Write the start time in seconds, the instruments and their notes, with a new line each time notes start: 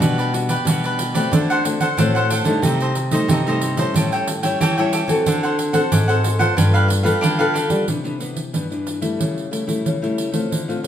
Already playing: nylon-string guitar G3 D4 F#4
0.01 nylon-string guitar B2, cavaquinho F#4 G4 B4 D5, pandeiro
0.18 cavaquinho G4 B4 D5, pandeiro
0.33 nylon-string guitar G3 D4 F#4, muted cavaquinho stroke, pandeiro
0.49 cavaquinho G4 B4 D5, pandeiro
0.67 nylon-string guitar B2 G3 D4 F#4, cavaquinho F#4 G4 B4 D5, pandeiro
0.84 cavaquinho G4 B4 D5, pandeiro
0.99 pandeiro
1.14 nylon-string guitar A3 C4 F#4, cavaquinho G4 B4 D5, pandeiro
1.33 nylon-string guitar D3, cavaquinho D4 A4 C5 F#5, pandeiro
1.50 cavaquinho A4 C5 F#5, pandeiro
1.65 nylon-string guitar A3 C4 F#4, muted cavaquinho stroke, pandeiro
1.81 cavaquinho A4 C5 F#5, pandeiro
1.98 nylon-string guitar A2 A3 C4 F#4, cavaquinho D4 A4 C5 F#5, pandeiro
2.15 cavaquinho A4 C5 F#5, pandeiro
2.30 cavaquinho D4 A4 C5 F#5, pandeiro
2.45 nylon-string guitar D3 G3 A3 D#4, pandeiro
2.63 nylon-string guitar C3, cavaquinho D#4 A4 C5 D#5, pandeiro
2.80 cavaquinho A4 C5 D#5, pandeiro
2.95 muted cavaquinho stroke, pandeiro
3.11 nylon-string guitar G3 A3 D#4, cavaquinho A4 C5 D#5, pandeiro
3.28 nylon-string guitar G2 C3, cavaquinho D#4 A4 C5, pandeiro
3.32 cavaquinho D#5
3.46 nylon-string guitar G3 A3 D#4, cavaquinho A4 C5 D#5, pandeiro
3.62 pandeiro
3.77 nylon-string guitar G3 C#4 E4, cavaquinho A4 C5 D#5, pandeiro
3.95 nylon-string guitar A2, cavaquinho G4 A4 C#5 G5, pandeiro
4.12 cavaquinho A4 C#5 G5, pandeiro
4.27 muted cavaquinho stroke, pandeiro
4.43 nylon-string guitar G3 C#4 E4, cavaquinho A4 C#5 G5, pandeiro
4.61 nylon-string guitar E3, cavaquinho G4 A4 C#5 G5, pandeiro
4.78 nylon-string guitar G3 C#4 E4, cavaquinho A4 C#5 G5, pandeiro
4.93 cavaquinho G4 A4 C#5 G5, pandeiro
5.08 nylon-string guitar E3 C4 F#4 A4, pandeiro
5.25 nylon-string guitar D3, cavaquinho D4 A4 C5 F#5, pandeiro
5.43 cavaquinho A4 C5 F#5, pandeiro
5.58 muted cavaquinho stroke, pandeiro
5.73 nylon-string guitar C4 F#4 A4, cavaquinho A4 C5 F#5, pandeiro
5.92 nylon-string guitar G#2, cavaquinho D4 A4 C5 F#5, pandeiro
6.08 nylon-string guitar C4 F#4 A4, cavaquinho A4 C5 F#5, pandeiro
6.24 pandeiro
6.39 nylon-string guitar B3 F4 A4, cavaquinho A4 C5 F#5, pandeiro
6.57 nylon-string guitar G2 G3, cavaquinho D4 G4 B4 F5, pandeiro
6.74 cavaquinho G4 B4 F5, pandeiro
6.88 muted cavaquinho stroke, pandeiro
7.03 nylon-string guitar B3 F4 A4, cavaquinho G4 B4 F5, pandeiro
7.21 nylon-string guitar D3, cavaquinho D4 G4 B4 F5, pandeiro
7.39 nylon-string guitar B3 F4 A4, cavaquinho G4 B4 F5, pandeiro
7.54 cavaquinho D4 G4 B4 F5, pandeiro
7.70 nylon-string guitar G3, pandeiro
7.88 nylon-string guitar C3 E3 B3 D4, pandeiro
8.04 nylon-string guitar E3 B3 D4, pandeiro
8.20 nylon-string guitar E3 B3 D4, pandeiro
8.37 pandeiro
8.53 nylon-string guitar G2 E3 B3 D4, pandeiro
8.70 nylon-string guitar E3 B3 D4, pandeiro
8.87 pandeiro
9.01 nylon-string guitar G3 A3 E4, pandeiro
9.19 nylon-string guitar C#3, pandeiro
9.38 pandeiro
9.51 nylon-string guitar G3 A3 E4, pandeiro
9.67 nylon-string guitar G3 A3 E4, pandeiro
9.85 nylon-string guitar C#3, pandeiro
10.02 nylon-string guitar G3 A3 E4, pandeiro
10.18 pandeiro
10.32 nylon-string guitar A3 C4 F4, pandeiro
10.51 nylon-string guitar D3, pandeiro
10.68 nylon-string guitar A3 C4 F4, pandeiro
10.83 nylon-string guitar A3 C4 F4